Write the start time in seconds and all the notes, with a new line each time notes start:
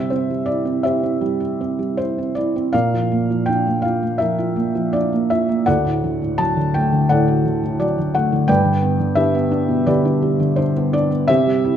Already playing: C3 G3 G4 C5 E5
0.10 C4 C5
0.30 G3
0.46 E4 D5
0.65 C4
0.83 E4 G4 C5 E5
1.03 C4
1.21 G3
1.40 E4
1.61 C4
1.79 G3
1.97 E4 C5
2.18 C4
2.35 E4 D5
2.56 C4
2.73 A#2 A#4 D5 F5
2.94 F3
3.12 A#3
3.30 F3
3.46 D4 G5
3.67 A#3
3.82 F4 F5
4.03 A#3
4.18 F3 A#4 E5
4.38 F4
4.56 A#3
4.75 F3
4.93 D4 D5
5.13 A#3
5.30 F4 E5
5.49 A#3
5.66 D2 A4 D5 F#5
5.85 A2
6.04 D3
6.22 A2
6.38 F#3 A5
6.57 D3
6.74 A3 G5
6.92 D3
7.09 A2 A4 D5 F#5
7.28 F#4
7.45 D3
7.63 A2
7.80 F#3 D5
7.98 D3
8.15 A3 F#5
8.32 D3
8.48 G2 B4 D5 G5
8.65 D3
8.82 B3
8.99 D3
9.15 D4 G4 B4 E5
9.35 B3
9.51 D4
9.69 B2
9.87 D3 G4 B4 D5
10.05 D4
10.22 G3
10.40 D3
10.56 D4 C5
10.76 B3
10.93 D4 D5
11.11 B3
11.28 C3 G4 C5 E5
11.47 G3
11.65 E4